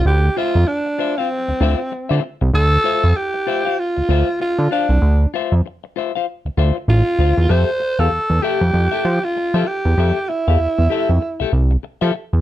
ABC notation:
X:1
M:4/4
L:1/16
Q:"Swing 16ths" 1/4=97
K:F
V:1 name="Clean electric guitar"
z2 [Fce] z3 [Fce] [Fcf] z2 [Fce] z2 [Fce] z2 | z2 [Fce] z3 [Fce] [Fcf] z2 [Fce] z3 [Fcf] z | z2 [Fce] z3 [Fce] [Fcf] z2 [Fce] z3 [Fcf] z | [GAe] z2 [GAf] z2 [GAe] z2 [GAe] z3 [GAe] z2 |
[GAe] z2 [GAf] z2 [GAe] z2 [GAe] z3 [GAe] z2 |]
V:2 name="Alto saxophone"
G2 F2 D3 C6- C z2 | A4 G4 F4 F2 D2- | D2 z8 z2 F4 | c3 A3 G4- G F3 G2- |
G2 E8 z6 |]
V:3 name="Analog synth bass" clef=bass
D,,2 z F,, z4 z D,, D,, z2 D, z C,, | D,,2 z F,, z4 z D,, D,, z2 D, z C,, | D,,2 z F,, z4 z D,, D,, z A,,, z D,, E,, | F,, z2 E,, E,, E,, z F,, F,, z F, z2 F, z E,, |
F,, z2 E,, E,, E,, z F,, z C,, C,,2 z F, z E,, |]